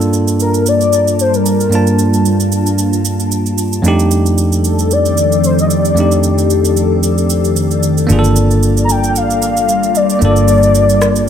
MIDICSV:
0, 0, Header, 1, 6, 480
1, 0, Start_track
1, 0, Key_signature, -2, "minor"
1, 0, Tempo, 530973
1, 1559, Time_signature, 4, 2, 24, 8
1, 10209, End_track
2, 0, Start_track
2, 0, Title_t, "Soft synth lead"
2, 0, Program_c, 0, 80
2, 374, Note_on_c, 0, 70, 87
2, 590, Note_off_c, 0, 70, 0
2, 615, Note_on_c, 0, 74, 111
2, 1054, Note_off_c, 0, 74, 0
2, 1091, Note_on_c, 0, 72, 99
2, 1224, Note_on_c, 0, 70, 76
2, 1237, Note_off_c, 0, 72, 0
2, 1325, Note_off_c, 0, 70, 0
2, 1331, Note_on_c, 0, 70, 86
2, 2009, Note_off_c, 0, 70, 0
2, 4214, Note_on_c, 0, 69, 85
2, 4452, Note_on_c, 0, 74, 101
2, 4466, Note_off_c, 0, 69, 0
2, 4926, Note_off_c, 0, 74, 0
2, 4929, Note_on_c, 0, 72, 101
2, 5047, Note_off_c, 0, 72, 0
2, 5061, Note_on_c, 0, 75, 94
2, 5107, Note_off_c, 0, 75, 0
2, 5170, Note_on_c, 0, 74, 103
2, 5848, Note_off_c, 0, 74, 0
2, 7997, Note_on_c, 0, 82, 71
2, 8054, Note_on_c, 0, 79, 110
2, 8068, Note_off_c, 0, 82, 0
2, 8292, Note_on_c, 0, 77, 106
2, 8306, Note_off_c, 0, 79, 0
2, 9009, Note_on_c, 0, 74, 90
2, 9023, Note_off_c, 0, 77, 0
2, 9136, Note_off_c, 0, 74, 0
2, 9143, Note_on_c, 0, 74, 94
2, 10209, Note_off_c, 0, 74, 0
2, 10209, End_track
3, 0, Start_track
3, 0, Title_t, "Ambient pad"
3, 0, Program_c, 1, 92
3, 0, Note_on_c, 1, 55, 83
3, 0, Note_on_c, 1, 58, 88
3, 0, Note_on_c, 1, 62, 73
3, 0, Note_on_c, 1, 65, 74
3, 0, Note_on_c, 1, 81, 72
3, 3444, Note_off_c, 1, 65, 0
3, 3445, Note_off_c, 1, 55, 0
3, 3445, Note_off_c, 1, 58, 0
3, 3445, Note_off_c, 1, 62, 0
3, 3445, Note_off_c, 1, 81, 0
3, 3480, Note_on_c, 1, 51, 73
3, 3480, Note_on_c, 1, 53, 84
3, 3480, Note_on_c, 1, 67, 72
3, 3480, Note_on_c, 1, 69, 88
3, 3480, Note_on_c, 1, 74, 76
3, 3481, Note_on_c, 1, 60, 73
3, 7283, Note_off_c, 1, 51, 0
3, 7283, Note_off_c, 1, 67, 0
3, 7284, Note_off_c, 1, 53, 0
3, 7284, Note_off_c, 1, 60, 0
3, 7319, Note_on_c, 1, 58, 89
3, 7322, Note_on_c, 1, 55, 84
3, 7322, Note_on_c, 1, 65, 77
3, 9203, Note_off_c, 1, 69, 0
3, 9237, Note_on_c, 1, 67, 89
3, 10209, Note_off_c, 1, 55, 0
3, 10209, Note_off_c, 1, 58, 0
3, 10209, Note_off_c, 1, 65, 0
3, 10209, Note_off_c, 1, 67, 0
3, 10209, Note_off_c, 1, 74, 0
3, 10209, End_track
4, 0, Start_track
4, 0, Title_t, "Tine electric piano"
4, 0, Program_c, 2, 4
4, 0, Control_c, 2, 64, 127
4, 0, Note_on_c, 2, 43, 74
4, 0, Note_on_c, 2, 58, 70
4, 0, Note_on_c, 2, 62, 68
4, 0, Note_on_c, 2, 65, 68
4, 0, Note_on_c, 2, 69, 82
4, 1510, Note_off_c, 2, 43, 0
4, 1523, Note_off_c, 2, 62, 0
4, 1529, Note_off_c, 2, 65, 0
4, 1533, Note_on_c, 2, 43, 62
4, 1535, Note_off_c, 2, 58, 0
4, 1536, Note_off_c, 2, 69, 0
4, 1546, Note_on_c, 2, 58, 58
4, 1558, Note_on_c, 2, 62, 60
4, 1571, Note_on_c, 2, 65, 56
4, 1584, Note_on_c, 2, 81, 69
4, 3430, Note_off_c, 2, 43, 0
4, 3436, Note_off_c, 2, 58, 0
4, 3442, Note_off_c, 2, 62, 0
4, 3449, Note_off_c, 2, 65, 0
4, 3454, Note_on_c, 2, 41, 76
4, 3455, Note_off_c, 2, 81, 0
4, 3467, Note_on_c, 2, 57, 68
4, 3480, Note_on_c, 2, 62, 68
4, 3492, Control_c, 2, 64, 0
4, 3494, Note_on_c, 2, 63, 70
4, 3507, Note_on_c, 2, 67, 85
4, 3659, Control_c, 2, 64, 127
4, 5351, Note_off_c, 2, 41, 0
4, 5357, Note_off_c, 2, 57, 0
4, 5363, Note_off_c, 2, 62, 0
4, 5370, Note_off_c, 2, 63, 0
4, 5374, Note_on_c, 2, 41, 61
4, 5377, Note_off_c, 2, 67, 0
4, 5388, Note_on_c, 2, 57, 58
4, 5400, Note_on_c, 2, 62, 57
4, 5413, Note_on_c, 2, 63, 57
4, 5426, Note_on_c, 2, 67, 69
4, 7270, Note_off_c, 2, 41, 0
4, 7277, Note_off_c, 2, 57, 0
4, 7283, Note_off_c, 2, 62, 0
4, 7290, Note_off_c, 2, 63, 0
4, 7293, Note_on_c, 2, 58, 75
4, 7296, Note_off_c, 2, 67, 0
4, 7310, Note_on_c, 2, 62, 69
4, 7328, Note_on_c, 2, 65, 70
4, 7331, Control_c, 2, 64, 0
4, 7344, Note_on_c, 2, 68, 66
4, 7395, Note_off_c, 2, 68, 0
4, 7402, Note_on_c, 2, 69, 81
4, 7484, Control_c, 2, 64, 127
4, 9190, Note_off_c, 2, 58, 0
4, 9198, Note_off_c, 2, 62, 0
4, 9207, Note_off_c, 2, 65, 0
4, 9212, Note_on_c, 2, 58, 64
4, 9229, Note_on_c, 2, 62, 59
4, 9244, Note_off_c, 2, 69, 0
4, 9247, Note_on_c, 2, 65, 57
4, 9264, Note_on_c, 2, 69, 68
4, 10209, Note_off_c, 2, 58, 0
4, 10209, Note_off_c, 2, 62, 0
4, 10209, Note_off_c, 2, 65, 0
4, 10209, Note_off_c, 2, 69, 0
4, 10209, End_track
5, 0, Start_track
5, 0, Title_t, "Fingered electric bass"
5, 0, Program_c, 3, 33
5, 7318, Note_on_c, 3, 31, 81
5, 9202, Note_off_c, 3, 31, 0
5, 9238, Note_on_c, 3, 31, 78
5, 10209, Note_off_c, 3, 31, 0
5, 10209, End_track
6, 0, Start_track
6, 0, Title_t, "Drums"
6, 12, Note_on_c, 9, 82, 47
6, 102, Note_off_c, 9, 82, 0
6, 121, Note_on_c, 9, 82, 65
6, 211, Note_off_c, 9, 82, 0
6, 251, Note_on_c, 9, 82, 57
6, 341, Note_off_c, 9, 82, 0
6, 361, Note_on_c, 9, 82, 74
6, 451, Note_off_c, 9, 82, 0
6, 490, Note_on_c, 9, 82, 51
6, 580, Note_off_c, 9, 82, 0
6, 599, Note_on_c, 9, 82, 73
6, 689, Note_off_c, 9, 82, 0
6, 731, Note_on_c, 9, 82, 42
6, 822, Note_off_c, 9, 82, 0
6, 839, Note_on_c, 9, 82, 84
6, 929, Note_off_c, 9, 82, 0
6, 973, Note_on_c, 9, 82, 47
6, 1063, Note_off_c, 9, 82, 0
6, 1079, Note_on_c, 9, 82, 75
6, 1170, Note_off_c, 9, 82, 0
6, 1211, Note_on_c, 9, 82, 45
6, 1301, Note_off_c, 9, 82, 0
6, 1319, Note_on_c, 9, 82, 87
6, 1409, Note_off_c, 9, 82, 0
6, 1451, Note_on_c, 9, 82, 57
6, 1542, Note_off_c, 9, 82, 0
6, 1559, Note_on_c, 9, 82, 66
6, 1649, Note_off_c, 9, 82, 0
6, 1690, Note_on_c, 9, 82, 44
6, 1780, Note_off_c, 9, 82, 0
6, 1797, Note_on_c, 9, 82, 85
6, 1888, Note_off_c, 9, 82, 0
6, 1931, Note_on_c, 9, 82, 47
6, 2021, Note_off_c, 9, 82, 0
6, 2039, Note_on_c, 9, 82, 66
6, 2129, Note_off_c, 9, 82, 0
6, 2171, Note_on_c, 9, 82, 54
6, 2261, Note_off_c, 9, 82, 0
6, 2279, Note_on_c, 9, 82, 73
6, 2369, Note_off_c, 9, 82, 0
6, 2409, Note_on_c, 9, 82, 52
6, 2499, Note_off_c, 9, 82, 0
6, 2517, Note_on_c, 9, 82, 72
6, 2608, Note_off_c, 9, 82, 0
6, 2650, Note_on_c, 9, 82, 43
6, 2740, Note_off_c, 9, 82, 0
6, 2757, Note_on_c, 9, 82, 84
6, 2848, Note_off_c, 9, 82, 0
6, 2891, Note_on_c, 9, 82, 49
6, 2981, Note_off_c, 9, 82, 0
6, 2998, Note_on_c, 9, 82, 74
6, 3088, Note_off_c, 9, 82, 0
6, 3130, Note_on_c, 9, 82, 45
6, 3221, Note_off_c, 9, 82, 0
6, 3237, Note_on_c, 9, 82, 87
6, 3327, Note_off_c, 9, 82, 0
6, 3370, Note_on_c, 9, 82, 56
6, 3461, Note_off_c, 9, 82, 0
6, 3477, Note_on_c, 9, 82, 66
6, 3567, Note_off_c, 9, 82, 0
6, 3610, Note_on_c, 9, 82, 46
6, 3701, Note_off_c, 9, 82, 0
6, 3716, Note_on_c, 9, 82, 87
6, 3806, Note_off_c, 9, 82, 0
6, 3851, Note_on_c, 9, 82, 47
6, 3941, Note_off_c, 9, 82, 0
6, 3959, Note_on_c, 9, 82, 67
6, 4049, Note_off_c, 9, 82, 0
6, 4090, Note_on_c, 9, 82, 56
6, 4180, Note_off_c, 9, 82, 0
6, 4199, Note_on_c, 9, 82, 74
6, 4289, Note_off_c, 9, 82, 0
6, 4329, Note_on_c, 9, 82, 51
6, 4420, Note_off_c, 9, 82, 0
6, 4439, Note_on_c, 9, 82, 72
6, 4529, Note_off_c, 9, 82, 0
6, 4570, Note_on_c, 9, 82, 42
6, 4661, Note_off_c, 9, 82, 0
6, 4678, Note_on_c, 9, 82, 83
6, 4768, Note_off_c, 9, 82, 0
6, 4811, Note_on_c, 9, 82, 49
6, 4901, Note_off_c, 9, 82, 0
6, 4918, Note_on_c, 9, 82, 73
6, 5008, Note_off_c, 9, 82, 0
6, 5050, Note_on_c, 9, 82, 45
6, 5141, Note_off_c, 9, 82, 0
6, 5157, Note_on_c, 9, 82, 85
6, 5248, Note_off_c, 9, 82, 0
6, 5290, Note_on_c, 9, 82, 56
6, 5380, Note_off_c, 9, 82, 0
6, 5397, Note_on_c, 9, 82, 68
6, 5488, Note_off_c, 9, 82, 0
6, 5529, Note_on_c, 9, 82, 46
6, 5619, Note_off_c, 9, 82, 0
6, 5636, Note_on_c, 9, 82, 83
6, 5726, Note_off_c, 9, 82, 0
6, 5770, Note_on_c, 9, 82, 47
6, 5860, Note_off_c, 9, 82, 0
6, 5878, Note_on_c, 9, 82, 66
6, 5968, Note_off_c, 9, 82, 0
6, 6010, Note_on_c, 9, 82, 56
6, 6100, Note_off_c, 9, 82, 0
6, 6118, Note_on_c, 9, 82, 72
6, 6209, Note_off_c, 9, 82, 0
6, 6357, Note_on_c, 9, 82, 74
6, 6448, Note_off_c, 9, 82, 0
6, 6491, Note_on_c, 9, 82, 43
6, 6581, Note_off_c, 9, 82, 0
6, 6597, Note_on_c, 9, 82, 83
6, 6688, Note_off_c, 9, 82, 0
6, 6732, Note_on_c, 9, 82, 48
6, 6822, Note_off_c, 9, 82, 0
6, 6838, Note_on_c, 9, 82, 76
6, 6929, Note_off_c, 9, 82, 0
6, 6971, Note_on_c, 9, 82, 46
6, 7061, Note_off_c, 9, 82, 0
6, 7078, Note_on_c, 9, 82, 84
6, 7169, Note_off_c, 9, 82, 0
6, 7211, Note_on_c, 9, 82, 56
6, 7301, Note_off_c, 9, 82, 0
6, 7318, Note_on_c, 9, 82, 66
6, 7409, Note_off_c, 9, 82, 0
6, 7451, Note_on_c, 9, 82, 46
6, 7542, Note_off_c, 9, 82, 0
6, 7558, Note_on_c, 9, 82, 85
6, 7649, Note_off_c, 9, 82, 0
6, 7692, Note_on_c, 9, 82, 48
6, 7783, Note_off_c, 9, 82, 0
6, 7800, Note_on_c, 9, 82, 68
6, 7891, Note_off_c, 9, 82, 0
6, 7930, Note_on_c, 9, 82, 57
6, 8021, Note_off_c, 9, 82, 0
6, 8040, Note_on_c, 9, 82, 77
6, 8130, Note_off_c, 9, 82, 0
6, 8170, Note_on_c, 9, 82, 51
6, 8260, Note_off_c, 9, 82, 0
6, 8279, Note_on_c, 9, 82, 77
6, 8369, Note_off_c, 9, 82, 0
6, 8411, Note_on_c, 9, 82, 44
6, 8501, Note_off_c, 9, 82, 0
6, 8517, Note_on_c, 9, 82, 79
6, 8608, Note_off_c, 9, 82, 0
6, 8650, Note_on_c, 9, 82, 49
6, 8741, Note_off_c, 9, 82, 0
6, 8758, Note_on_c, 9, 82, 75
6, 8848, Note_off_c, 9, 82, 0
6, 8889, Note_on_c, 9, 82, 43
6, 8980, Note_off_c, 9, 82, 0
6, 8996, Note_on_c, 9, 82, 87
6, 9086, Note_off_c, 9, 82, 0
6, 9128, Note_on_c, 9, 82, 58
6, 9218, Note_off_c, 9, 82, 0
6, 9236, Note_on_c, 9, 82, 65
6, 9326, Note_off_c, 9, 82, 0
6, 9368, Note_on_c, 9, 82, 45
6, 9458, Note_off_c, 9, 82, 0
6, 9475, Note_on_c, 9, 82, 86
6, 9565, Note_off_c, 9, 82, 0
6, 9609, Note_on_c, 9, 82, 48
6, 9700, Note_off_c, 9, 82, 0
6, 9717, Note_on_c, 9, 82, 68
6, 9807, Note_off_c, 9, 82, 0
6, 9849, Note_on_c, 9, 82, 57
6, 9939, Note_off_c, 9, 82, 0
6, 9958, Note_on_c, 9, 37, 93
6, 9958, Note_on_c, 9, 82, 75
6, 10049, Note_off_c, 9, 37, 0
6, 10049, Note_off_c, 9, 82, 0
6, 10087, Note_on_c, 9, 82, 51
6, 10177, Note_off_c, 9, 82, 0
6, 10209, End_track
0, 0, End_of_file